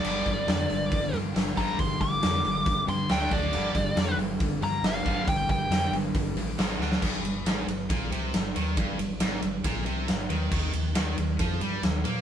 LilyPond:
<<
  \new Staff \with { instrumentName = "Lead electric guitar" } { \time 4/4 \key g \minor \tempo 4 = 138 d''2~ d''8 r4 bes''8 | c'''8 d'''2 c'''8 g''8 d''8~ | d''4. r4 bes''8 f''4 | g''8 g''4 r2 r8 |
r1 | r1 | r1 | }
  \new Staff \with { instrumentName = "Distorted electric guitar" } { \clef bass \time 4/4 \key g \minor <g, d g bes d' g'>2~ <g, d g bes d' g'>8 <g, d g bes d' g'>8 <g, d g bes d' g'>4 | <g, d g bes d' g'>2~ <g, d g bes d' g'>8 <g, d g bes d' g'>8 r4 | <g, d g bes d'>2~ <g, d g bes d'>8 <g, d g bes d'>8 <g, d g bes d'>4 | <g, d g bes d'>2~ <g, d g bes d'>8 <g, d g bes d'>8 r4 |
r1 | r1 | r1 | }
  \new Staff \with { instrumentName = "Distorted electric guitar" } { \clef bass \time 4/4 \key g \minor <g, d g>8 <g, d>8 <g, d>8 <g, d>8 <g, d>8 <g, d>8 <g, d>8 <g, d g>8 | <g, d>8 <g, d>8 <g, d>8 <g, d>8 <g, d>8 <g, d>8 <d a d'>8 <d a d'>8 | <g, d g>8 <g, d>8 <g, d>8 <g, d>8 <g, d>8 <g, d>8 <g, d>8 <g, d g>8 | <g, d>8 <g, d>8 <g, d>8 <g, d>8 <g, d>8 <g, d>8 <aes, ees aes>8 <d a d'>8 |
g,8 g,8 aes,8 g,8 bes,8 c8 g,8 ees8 | g,8 g,8 aes,8 g,8 bes,8 c8 g,8 ees8 | ees8 ees8 ees8 ees8 f8 g8 ees8 bes8 | }
  \new Staff \with { instrumentName = "Distorted electric guitar" } { \clef bass \time 4/4 \key g \minor <g, d g>8 <g, d>8 <g, d>8 <g, d>8 <g, d>8 <g, d>8 <g, d>8 <g, d g>8 | <g, d>8 <g, d>8 <g, d>8 <g, d>8 <g, d>8 <g, d>8 <d a d'>8 <d a d'>8 | <g, d g>8 <g, d>8 <g, d>8 <g, d>8 <g, d>8 <g, d>8 <g, d>8 <g, d g>8 | <g, d>8 <g, d>8 <g, d>8 <g, d>8 <g, d>8 <g, d>8 <aes, ees aes>8 <d a d'>8 |
g,8 g,8 aes,8 g,8 bes,8 c8 g,8 ees8 | g,8 g,8 aes,8 g,8 bes,8 c8 g,8 ees8 | ees8 ees8 ees8 ees8 f8 g8 ees8 bes8 | }
  \new Staff \with { instrumentName = "Fingered electric bass" } { \clef bass \time 4/4 \key g \minor g,,8 g,,8 f,8 g,,8 g,,8 g,8 g,,8 g,,8 | g,,8 g,,8 f,8 g,,8 g,,8 g,8 d,8 d,8 | g,,8 g,,8 f,8 g,,8 g,,8 g,8 g,,8 g,,8 | g,,8 g,,8 f,8 g,,8 g,,8 a,,8 aes,,8 d,8 |
g,,8 g,,8 aes,,8 g,,8 bes,,8 c,8 g,,8 ees,8 | g,,8 g,,8 aes,,8 g,,8 bes,,8 c,8 g,,8 ees,8 | ees,8 ees,8 ees,8 ees,8 f,8 g,8 ees,8 bes,8 | }
  \new DrumStaff \with { instrumentName = "Drums" } \drummode { \time 4/4 cymc8 <hho bd>8 <hho sn>8 hho8 <hho bd>8 hho8 <hho sn>8 <hho bd>8 | <hho bd>8 <hho bd>8 <hho sn>8 hho8 <hho bd>8 hho8 <hho sn>8 <hho bd>8 | cymc8 <hho bd>8 <hho sn>8 hho8 <hho bd>8 hho8 <hho sn>8 <hho bd>8 | <hho bd>8 <hho bd>8 <hho sn>8 hho8 <hho bd>8 hho8 <hho sn>8 sn16 sn16 |
<cymc bd>8 cymr8 <cymr sn>8 cymr8 <bd cymr>8 cymr8 <cymr sn>8 cymr8 | <bd cymr>8 cymr8 <cymr sn>8 cymr8 <bd cymr>8 cymr8 <cymr sn>8 cymr8 | <cymc bd>8 cymr8 <cymr sn>8 cymr8 <bd cymr>8 cymr8 <cymr sn>8 cymr8 | }
>>